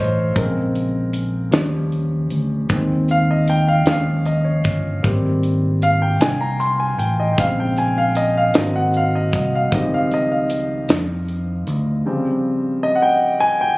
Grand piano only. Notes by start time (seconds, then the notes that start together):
Already playing: D#3 A3 C#4 A4 A#4 C5 C#5 D#5 F5
0.37 C#3 G#3 C4 A#4
1.51 F3 G3 C#4
2.70 D#3 G#3 C4
3.11 F5
3.31 D#5
3.50 G5
3.68 F5
3.87 F3 G#3 C#4 F5
4.26 D#5
4.45 C#5
5.03 G3 A#3 C4
5.83 F5
6.02 G5
6.21 G#5
6.41 A#5
6.60 C6
6.80 G#5
6.98 G5
7.20 D#5
7.33 G5
7.38 C#3 G#3 C4 F5
7.60 G5
7.78 G#5
7.98 F5
8.17 D#5
8.37 F5
8.55 F#3 A#3 C4 D#5
8.76 F#5
8.97 F5
9.15 D#5
9.35 D#5
9.55 F5
9.73 D#3 F3 G3 C4 D#5
9.94 F5
10.14 D#5
10.32 F5
12.06 C#3 F3 G3 C4
12.83 D#5
12.96 F#5
13.02 G5
13.40 G#5
13.61 G5